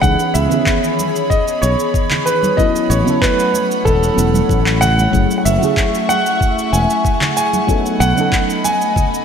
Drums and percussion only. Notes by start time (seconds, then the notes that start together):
0.03 kick, cabasa
0.20 cabasa
0.35 cabasa
0.51 low conga, cabasa
0.66 kick, clap, cabasa
0.84 cabasa
0.99 high conga, cabasa
1.16 cabasa
1.30 kick, cabasa
1.48 cabasa
1.63 cabasa
1.80 cabasa
1.94 kick, cabasa
2.10 clap, low conga, cabasa
2.27 cabasa
2.43 high conga, cabasa
2.58 kick, cabasa
2.76 cabasa
2.91 cabasa
3.07 low conga, cabasa
3.22 kick, clap, cabasa
3.39 cabasa
3.53 high conga, cabasa
3.72 cabasa
3.86 kick, low conga, cabasa
4.03 cabasa
4.18 cabasa
4.34 high conga, cabasa
4.49 kick, cabasa
4.66 clap, cabasa
4.82 low conga, cabasa
4.98 high conga, cabasa
5.13 kick, cabasa
5.31 cabasa
5.46 cabasa
5.62 low conga, cabasa
5.77 kick, clap, cabasa
5.95 cabasa
6.09 high conga, cabasa
6.26 cabasa
6.41 kick, cabasa
6.59 cabasa
6.74 cabasa
6.90 cabasa
7.05 kick, cabasa
7.21 clap, low conga, cabasa
7.37 cabasa
7.53 high conga, cabasa
7.68 kick, cabasa
7.86 cabasa
8.01 cabasa
8.17 low conga, cabasa
8.32 kick, clap, cabasa
8.50 cabasa
8.65 high conga, cabasa
8.82 cabasa
8.96 kick, low conga, cabasa
9.14 cabasa